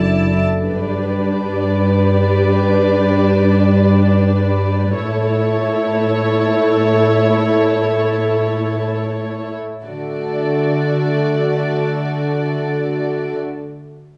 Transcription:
Already playing: F#1 F#2 D4 E4 A4 D5 A5
0.30 A4
0.64 G2 D4 G4 B4 D5
4.95 A2 A3 E4 A4 C#5
9.85 D3 A3 F#4 A4 D5

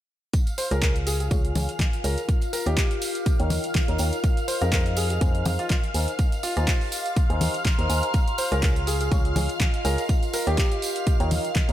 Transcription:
0.33 F4 F5 F6, kick, closed hi-hat, tambourine
0.47 closed hi-hat, tambourine
0.56 A#4 C5, open hi-hat, tambourine
0.71 C#2 F4 G#4 A#4 C#5 G#5, cross-stick, closed hi-hat, tambourine
0.82 A#4, kick, clap, closed hi-hat, tambourine
0.93 D#5, closed hi-hat
0.98 G#5
1.07 G#4, open hi-hat, tambourine
1.20 G#4, closed hi-hat, tambourine
1.31 C#2 F4 G#4 C#5 C#6, kick, closed hi-hat, tambourine
1.45 closed hi-hat
1.55 C#2 F4 G#4 C#5 G#5, open hi-hat, tambourine, high conga
1.69 closed hi-hat, tambourine
1.79 kick, clap, closed hi-hat, tambourine, high conga
1.93 closed hi-hat
2.04 C#2 F4 G#4 A#4 C#5 G#5, open hi-hat, tambourine
2.18 closed hi-hat, tambourine
2.29 kick, closed hi-hat, tambourine
2.41 closed hi-hat, tambourine
2.53 A#4, open hi-hat, tambourine
2.66 D#2 D#4 G4 A#4 C#5 G5, cross-stick, closed hi-hat, tambourine
2.77 kick, clap, closed hi-hat, tambourine
2.91 closed hi-hat
3.02 open hi-hat, tambourine
3.15 G5, closed hi-hat, tambourine
3.26 kick, closed hi-hat, tambourine
3.40 D#2 D#4 A#4 C#5 G5, closed hi-hat
3.50 open hi-hat, tambourine, high conga
3.64 closed hi-hat, tambourine
3.75 kick, clap, closed hi-hat, tambourine, high conga
3.88 D#2 D#4 A#4 C#5 A#5, closed hi-hat
3.98 D#2 D#4 A#4 C#5 G5, open hi-hat, tambourine
4.12 closed hi-hat, tambourine
4.24 kick, closed hi-hat, tambourine
4.37 closed hi-hat, tambourine
4.48 C5, open hi-hat, tambourine
4.61 F2 D#4 G#4 A#4 C5 F5, cross-stick, closed hi-hat, tambourine
4.72 A#4, kick, clap, closed hi-hat, tambourine
4.86 closed hi-hat
4.97 G#4, open hi-hat, tambourine
5.01 G#5
5.10 G#4, closed hi-hat, tambourine
5.21 F2 D#4 G#4 C5 G#5, kick, closed hi-hat, tambourine
5.35 closed hi-hat
5.46 F2 D#4 G#4 C5 F5, open hi-hat, tambourine, high conga
5.59 F4, closed hi-hat, tambourine
5.70 kick, clap, closed hi-hat, tambourine, high conga
5.83 closed hi-hat
5.94 D#2 D#4 G4 A#4 C5 G#5, open hi-hat, tambourine
6.08 closed hi-hat, tambourine
6.14 F5
6.19 kick, closed hi-hat, tambourine
6.32 closed hi-hat, tambourine
6.43 F4, open hi-hat, tambourine
6.53 D#2 D#4 F4 A#4 C5 G#5 C6, cross-stick, closed hi-hat, tambourine
6.67 kick, clap, closed hi-hat, tambourine
6.81 open hi-hat
6.92 A#5, open hi-hat, tambourine
7.06 closed hi-hat, tambourine
7.16 kick, closed hi-hat, tambourine
7.30 D#2 D#4 A#4 C5 G#5, closed hi-hat
7.41 open hi-hat, tambourine, high conga
7.54 closed hi-hat, tambourine
7.65 kick, clap, closed hi-hat, tambourine, high conga
7.79 D#2 D#4 A#4 C5 A#5, closed hi-hat
7.90 D#2 D#4 A#4 C5 G#5, open hi-hat, tambourine
8.02 closed hi-hat, tambourine
8.14 F4, kick, closed hi-hat, tambourine
8.28 A#4, closed hi-hat, tambourine
8.38 C5, open hi-hat, tambourine
8.52 C#2 F4 G#4 A#4 C#5 G#5, cross-stick, closed hi-hat, tambourine
8.62 A#4, kick, clap, closed hi-hat, tambourine
8.76 closed hi-hat
8.87 G#4, open hi-hat, tambourine
9.00 G#4 D#5 G#5, closed hi-hat, tambourine
9.12 C#2 F4 G#4 C#5 C#6, kick, closed hi-hat, tambourine
9.25 closed hi-hat
9.36 C#2 F4 G#4 C#5 G#5, open hi-hat, tambourine, high conga
9.49 closed hi-hat, tambourine
9.60 kick, clap, closed hi-hat, tambourine, high conga
9.74 closed hi-hat
9.85 C#2 F4 G#4 A#4 C#5 G#5, open hi-hat, tambourine
9.98 closed hi-hat, tambourine
10.09 kick, closed hi-hat, tambourine
10.22 closed hi-hat, tambourine
10.33 A#4, open hi-hat, tambourine
10.47 D#2 D#4 G4 A#4 C#5 G5, cross-stick, closed hi-hat, tambourine
10.58 kick, clap, closed hi-hat, tambourine
10.71 closed hi-hat
10.82 open hi-hat, tambourine
10.96 G5, closed hi-hat, tambourine
11.07 kick, closed hi-hat, tambourine
11.20 D#2 D#4 A#4 C#5 G5, closed hi-hat
11.31 open hi-hat, tambourine, high conga
11.45 closed hi-hat, tambourine
11.55 kick, clap, closed hi-hat, tambourine, high conga
11.69 D#2 D#4 A#4 C#5 A#5, closed hi-hat

